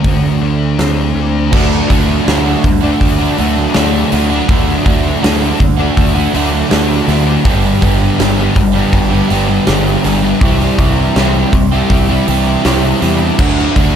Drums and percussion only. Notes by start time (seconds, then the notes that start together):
0.04 kick, open hi-hat
0.79 snare, open hi-hat
1.53 kick, crash
1.90 kick, open hi-hat
2.28 snare, open hi-hat
2.64 kick, open hi-hat
3.01 kick, open hi-hat
3.38 open hi-hat
3.74 snare, open hi-hat
4.12 open hi-hat
4.49 kick, open hi-hat
4.86 kick, open hi-hat
5.24 snare, open hi-hat
5.60 kick, open hi-hat
5.97 kick, open hi-hat
6.34 open hi-hat
6.71 snare, open hi-hat
7.08 snare, open hi-hat
7.45 kick, open hi-hat
7.82 kick, open hi-hat
8.20 snare, open hi-hat
8.56 kick, open hi-hat
8.93 kick, open hi-hat
9.30 open hi-hat
9.67 snare, open hi-hat
10.04 snare, open hi-hat
10.41 kick, open hi-hat
10.60 snare
10.79 kick, open hi-hat
11.16 snare, open hi-hat
11.53 kick, open hi-hat
11.90 kick, open hi-hat
12.28 open hi-hat
12.65 snare, open hi-hat
13.02 snare, open hi-hat
13.39 kick, crash
13.59 snare
13.76 kick, open hi-hat